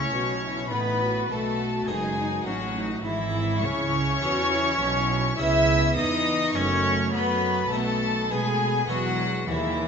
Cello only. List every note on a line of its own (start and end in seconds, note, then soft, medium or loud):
0.00 0.72 C#4 medium
0.71 1.29 B3 medium
1.30 1.89 A3 medium
1.87 2.47 G#3 medium
2.46 3.03 F#3 medium
3.04 3.65 E3 loud
3.64 5.38 C#4 loud
5.39 5.96 E4 loud
5.97 6.57 D#4 loud
6.55 7.13 C#4 loud
7.13 7.70 B3 loud
7.71 8.29 A3 loud
8.30 8.88 G#3 medium
8.89 9.49 F#3 loud
9.48 9.88 E3 loud